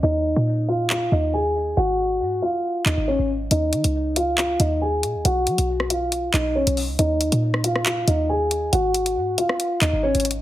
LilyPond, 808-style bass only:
\new Staff \with { instrumentName = "808-style bass" } { \clef bass \time 4/4 \key ees \minor \tempo 4 = 138 ees,8. bes,4.~ bes,16 ees,4. | aes,,4 aes,8 r4 ees,16 aes,,8 aes,,8. | ees,8 ees16 des,4.~ des,16 ees,4 bes,16 ees,16 | b,,8 fis16 b,,4.~ b,,16 b,,8 bes,,16 b,,8 des,16 |
ees,8. bes,4.~ bes,16 ees,4. | aes,,4 aes,8 r4 ees,16 aes,,8 aes,,8. | }